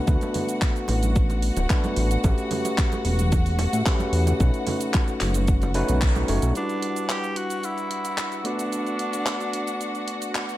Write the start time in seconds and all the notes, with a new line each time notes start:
Already playing: F#4 F#5
0.06 D2 A3 B3 D4 F#4 B4, kick, closed hi-hat, shaker
0.21 closed hi-hat, muted conga, shaker
0.34 open hi-hat, high conga, low conga
0.49 closed hi-hat, shaker
0.62 kick, clap, closed hi-hat, muted conga, shaker
0.76 closed hi-hat, shaker
0.88 A1, open hi-hat, muted conga
1.03 closed hi-hat, high conga, shaker
1.16 kick, closed hi-hat, shaker
1.30 closed hi-hat, muted conga, shaker
1.42 open hi-hat
1.57 D1, closed hi-hat, muted conga, shaker
1.69 A3 B3 D4 F#4 B4, kick, clap, closed hi-hat, shaker
1.84 closed hi-hat, high conga, shaker
1.96 A1, open hi-hat, muted conga
2.11 closed hi-hat, shaker
2.23 A1 A3 C#4 F#4 G4 B4, kick, closed hi-hat, muted conga, shaker
2.38 closed hi-hat, shaker
2.51 open hi-hat, high conga, low conga
2.65 closed hi-hat, muted conga, shaker
2.78 kick, clap, closed hi-hat, shaker
2.92 closed hi-hat, muted conga, shaker
3.05 E1, open hi-hat
3.19 closed hi-hat, high conga, shaker
3.32 kick, closed hi-hat, muted conga, shaker
3.46 open hi-hat, shaker
3.59 open hi-hat, muted conga
3.73 A2, closed hi-hat, shaker
3.85 A3 C#4 F#4 G4 B4, kick, clap, closed hi-hat, shaker
3.99 closed hi-hat, muted conga, high conga, shaker
4.12 E2, open hi-hat
4.27 closed hi-hat, muted conga, low conga, shaker
4.39 B1 A3 C#4 D#4 F#4 B4, kick, closed hi-hat, shaker
4.54 closed hi-hat, shaker
4.67 open hi-hat, muted conga, high conga, low conga
4.81 closed hi-hat, shaker
4.94 kick, clap, closed hi-hat, muted conga, shaker
5.08 closed hi-hat, shaker
5.20 F#1, clap, open hi-hat
5.34 closed hi-hat, muted conga, high conga, shaker
5.47 kick, closed hi-hat, shaker
5.62 closed hi-hat, muted conga, shaker
5.74 A3 C#4 D#4 F#4 B4, open hi-hat
5.89 B1, closed hi-hat, low conga, shaker
6.01 kick, clap, closed hi-hat, muted conga, shaker
6.15 closed hi-hat, high conga, shaker
6.28 F#1 A3 C#4 D#4 F#4 C#5, open hi-hat, muted conga
6.42 B1, closed hi-hat, shaker
6.55 G3 D4 E4 F#4 B4 F#5, closed hi-hat, shaker
6.69 closed hi-hat, shaker
6.82 closed hi-hat
6.96 closed hi-hat, shaker
7.09 G4, clap, closed hi-hat, shaker
7.24 closed hi-hat, shaker
7.36 F#4, closed hi-hat
7.50 closed hi-hat, shaker
7.63 E4, closed hi-hat, shaker
7.78 closed hi-hat, shaker
7.91 closed hi-hat
8.05 closed hi-hat, shaker
8.18 clap, closed hi-hat, shaker
8.32 closed hi-hat, shaker
8.38 E4
8.44 A3 B3 D4 F#4 B4, closed hi-hat
8.59 closed hi-hat, shaker
8.72 closed hi-hat, shaker
8.86 closed hi-hat, shaker
8.99 closed hi-hat
9.13 closed hi-hat, shaker
9.26 clap, closed hi-hat, shaker
9.40 closed hi-hat, shaker
9.53 closed hi-hat
9.67 closed hi-hat, shaker
9.81 closed hi-hat, shaker
9.95 closed hi-hat, shaker
10.08 closed hi-hat
10.22 closed hi-hat, shaker
10.35 clap, closed hi-hat, shaker
10.49 closed hi-hat, shaker